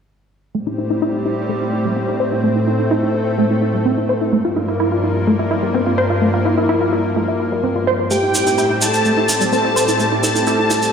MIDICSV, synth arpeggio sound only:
0, 0, Header, 1, 2, 480
1, 0, Start_track
1, 0, Tempo, 472441
1, 557, Time_signature, 4, 2, 24, 8
1, 11100, End_track
2, 0, Start_track
2, 0, Title_t, "Synth arpeggio sound"
2, 0, Program_c, 0, 84
2, 555, Note_on_c, 0, 57, 77
2, 622, Note_off_c, 0, 57, 0
2, 678, Note_on_c, 0, 64, 72
2, 773, Note_off_c, 0, 64, 0
2, 795, Note_on_c, 0, 64, 72
2, 835, Note_off_c, 0, 64, 0
2, 918, Note_on_c, 0, 64, 77
2, 981, Note_off_c, 0, 64, 0
2, 1036, Note_on_c, 0, 64, 94
2, 1135, Note_off_c, 0, 64, 0
2, 1159, Note_on_c, 0, 64, 72
2, 1222, Note_off_c, 0, 64, 0
2, 1276, Note_on_c, 0, 64, 73
2, 1375, Note_off_c, 0, 64, 0
2, 1516, Note_on_c, 0, 57, 78
2, 1582, Note_off_c, 0, 57, 0
2, 1639, Note_on_c, 0, 64, 71
2, 1733, Note_off_c, 0, 64, 0
2, 1757, Note_on_c, 0, 64, 70
2, 1823, Note_off_c, 0, 64, 0
2, 1878, Note_on_c, 0, 55, 68
2, 1917, Note_off_c, 0, 55, 0
2, 1996, Note_on_c, 0, 60, 78
2, 2062, Note_off_c, 0, 60, 0
2, 2118, Note_on_c, 0, 64, 73
2, 2182, Note_off_c, 0, 64, 0
2, 2235, Note_on_c, 0, 72, 93
2, 2302, Note_off_c, 0, 72, 0
2, 2359, Note_on_c, 0, 64, 72
2, 2454, Note_off_c, 0, 64, 0
2, 2477, Note_on_c, 0, 57, 79
2, 2543, Note_off_c, 0, 57, 0
2, 2599, Note_on_c, 0, 64, 72
2, 2694, Note_off_c, 0, 64, 0
2, 2717, Note_on_c, 0, 64, 73
2, 2756, Note_off_c, 0, 64, 0
2, 2839, Note_on_c, 0, 64, 78
2, 2902, Note_off_c, 0, 64, 0
2, 2956, Note_on_c, 0, 64, 99
2, 3055, Note_off_c, 0, 64, 0
2, 3079, Note_on_c, 0, 64, 69
2, 3142, Note_off_c, 0, 64, 0
2, 3196, Note_on_c, 0, 64, 71
2, 3295, Note_off_c, 0, 64, 0
2, 3436, Note_on_c, 0, 57, 79
2, 3502, Note_off_c, 0, 57, 0
2, 3560, Note_on_c, 0, 64, 72
2, 3654, Note_off_c, 0, 64, 0
2, 3677, Note_on_c, 0, 64, 72
2, 3743, Note_off_c, 0, 64, 0
2, 3799, Note_on_c, 0, 55, 75
2, 3837, Note_off_c, 0, 55, 0
2, 3916, Note_on_c, 0, 60, 78
2, 3982, Note_off_c, 0, 60, 0
2, 4040, Note_on_c, 0, 64, 77
2, 4103, Note_off_c, 0, 64, 0
2, 4157, Note_on_c, 0, 72, 91
2, 4223, Note_off_c, 0, 72, 0
2, 4280, Note_on_c, 0, 64, 73
2, 4374, Note_off_c, 0, 64, 0
2, 4397, Note_on_c, 0, 57, 76
2, 4463, Note_off_c, 0, 57, 0
2, 4519, Note_on_c, 0, 65, 75
2, 4614, Note_off_c, 0, 65, 0
2, 4637, Note_on_c, 0, 64, 74
2, 4676, Note_off_c, 0, 64, 0
2, 4759, Note_on_c, 0, 64, 78
2, 4822, Note_off_c, 0, 64, 0
2, 4876, Note_on_c, 0, 64, 95
2, 4975, Note_off_c, 0, 64, 0
2, 4999, Note_on_c, 0, 65, 73
2, 5062, Note_off_c, 0, 65, 0
2, 5115, Note_on_c, 0, 64, 71
2, 5215, Note_off_c, 0, 64, 0
2, 5357, Note_on_c, 0, 57, 80
2, 5423, Note_off_c, 0, 57, 0
2, 5479, Note_on_c, 0, 64, 74
2, 5573, Note_off_c, 0, 64, 0
2, 5596, Note_on_c, 0, 64, 71
2, 5662, Note_off_c, 0, 64, 0
2, 5719, Note_on_c, 0, 55, 73
2, 5757, Note_off_c, 0, 55, 0
2, 5836, Note_on_c, 0, 60, 83
2, 5902, Note_off_c, 0, 60, 0
2, 5958, Note_on_c, 0, 65, 79
2, 6022, Note_off_c, 0, 65, 0
2, 6075, Note_on_c, 0, 72, 98
2, 6142, Note_off_c, 0, 72, 0
2, 6198, Note_on_c, 0, 65, 75
2, 6293, Note_off_c, 0, 65, 0
2, 6315, Note_on_c, 0, 57, 75
2, 6382, Note_off_c, 0, 57, 0
2, 6439, Note_on_c, 0, 65, 71
2, 6533, Note_off_c, 0, 65, 0
2, 6556, Note_on_c, 0, 64, 73
2, 6596, Note_off_c, 0, 64, 0
2, 6680, Note_on_c, 0, 64, 77
2, 6742, Note_off_c, 0, 64, 0
2, 6797, Note_on_c, 0, 64, 101
2, 6896, Note_off_c, 0, 64, 0
2, 6920, Note_on_c, 0, 65, 69
2, 6983, Note_off_c, 0, 65, 0
2, 7037, Note_on_c, 0, 64, 75
2, 7136, Note_off_c, 0, 64, 0
2, 7277, Note_on_c, 0, 57, 80
2, 7343, Note_off_c, 0, 57, 0
2, 7399, Note_on_c, 0, 64, 71
2, 7494, Note_off_c, 0, 64, 0
2, 7517, Note_on_c, 0, 64, 71
2, 7583, Note_off_c, 0, 64, 0
2, 7641, Note_on_c, 0, 55, 70
2, 7678, Note_off_c, 0, 55, 0
2, 7757, Note_on_c, 0, 60, 81
2, 7823, Note_off_c, 0, 60, 0
2, 7881, Note_on_c, 0, 65, 78
2, 7943, Note_off_c, 0, 65, 0
2, 7999, Note_on_c, 0, 72, 96
2, 8063, Note_off_c, 0, 72, 0
2, 8122, Note_on_c, 0, 65, 72
2, 8215, Note_off_c, 0, 65, 0
2, 8239, Note_on_c, 0, 57, 80
2, 8304, Note_off_c, 0, 57, 0
2, 8361, Note_on_c, 0, 64, 73
2, 8454, Note_off_c, 0, 64, 0
2, 8478, Note_on_c, 0, 64, 71
2, 8517, Note_off_c, 0, 64, 0
2, 8601, Note_on_c, 0, 64, 73
2, 8663, Note_off_c, 0, 64, 0
2, 8718, Note_on_c, 0, 64, 100
2, 8816, Note_off_c, 0, 64, 0
2, 8842, Note_on_c, 0, 64, 73
2, 8904, Note_off_c, 0, 64, 0
2, 8958, Note_on_c, 0, 64, 70
2, 9056, Note_off_c, 0, 64, 0
2, 9199, Note_on_c, 0, 57, 77
2, 9264, Note_off_c, 0, 57, 0
2, 9321, Note_on_c, 0, 64, 73
2, 9415, Note_off_c, 0, 64, 0
2, 9439, Note_on_c, 0, 64, 71
2, 9504, Note_off_c, 0, 64, 0
2, 9560, Note_on_c, 0, 55, 71
2, 9598, Note_off_c, 0, 55, 0
2, 9678, Note_on_c, 0, 60, 77
2, 9743, Note_off_c, 0, 60, 0
2, 9801, Note_on_c, 0, 64, 77
2, 9863, Note_off_c, 0, 64, 0
2, 9918, Note_on_c, 0, 72, 97
2, 9983, Note_off_c, 0, 72, 0
2, 10041, Note_on_c, 0, 64, 74
2, 10134, Note_off_c, 0, 64, 0
2, 10157, Note_on_c, 0, 57, 76
2, 10223, Note_off_c, 0, 57, 0
2, 10281, Note_on_c, 0, 64, 73
2, 10375, Note_off_c, 0, 64, 0
2, 10399, Note_on_c, 0, 64, 74
2, 10437, Note_off_c, 0, 64, 0
2, 10521, Note_on_c, 0, 64, 77
2, 10583, Note_off_c, 0, 64, 0
2, 10639, Note_on_c, 0, 64, 99
2, 10737, Note_off_c, 0, 64, 0
2, 10761, Note_on_c, 0, 64, 73
2, 10823, Note_off_c, 0, 64, 0
2, 10878, Note_on_c, 0, 64, 73
2, 10976, Note_off_c, 0, 64, 0
2, 11100, End_track
0, 0, End_of_file